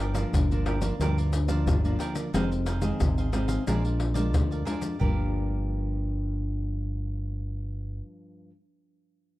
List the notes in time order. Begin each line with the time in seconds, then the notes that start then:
Already playing: G1 G2
0.00 G4 A#4 D5 F5
0.14 F3 A#3 D4 A#4 D5 F5, pandeiro, maracas
0.33 G1 D3, pandeiro, maracas, surdo
0.51 F3 A#3 D4 A#4 D5 F5, pandeiro, maracas
0.66 G4 A#4 D5 F5, pandeiro
0.81 F3 A#3 D4 A#4 D5 F5, pandeiro, maracas
0.99 D2 G2 F3 A#3 D4 G4 A#4 D5 F5, pandeiro, maracas, surdo
1.18 A#4 D5 F5, pandeiro, maracas
1.33 muted cavaquinho stroke, pandeiro, maracas
1.48 F3 A#3 D4 A#4 D5 F5, pandeiro, maracas
1.66 G1 D3, pandeiro, maracas, surdo
1.84 F3 A#3 D4 A#4 D5 F5, pandeiro, maracas
1.99 G4 A#4 D5 F5, pandeiro, maracas
2.15 A#4 D5 F5, pandeiro, maracas
2.33 F1 F2 D#3 G#3 C4 D#4 G#4 C5 F5, pandeiro, maracas, surdo
2.51 muted cavaquinho stroke, pandeiro, maracas
2.66 D#4 G#4 C5 F5, pandeiro, maracas
2.81 D#3 G#3 C4 G#4 C5 F5, pandeiro, maracas
3.00 G#1 C3, pandeiro, maracas, surdo
3.18 G#4 C5 F5, pandeiro, maracas
3.32 D#3 G#3 C4 D#4 G#4 C5 F5, pandeiro, maracas
3.48 G#4 C5 F5, pandeiro, maracas
3.67 A#1 A#2 F3 G#3 D4 G#4 A#4 D5 F5, pandeiro, maracas, surdo
3.84 A#4 D5 F5, pandeiro, maracas
4.00 muted cavaquinho stroke, pandeiro
4.14 F3 G#3 D4 A#4 D5 F5, pandeiro, maracas
4.34 D2 F2, pandeiro, maracas, surdo
4.51 A#4 D5 F5, pandeiro, maracas
4.65 F3 G#3 D4 G#4 A#4 D5 F5, pandeiro, maracas
4.81 A#4 D5 F5, pandeiro, maracas
4.99 G1 G2 F3 G4 A#4 D5 F5, surdo
5.03 A#3 D4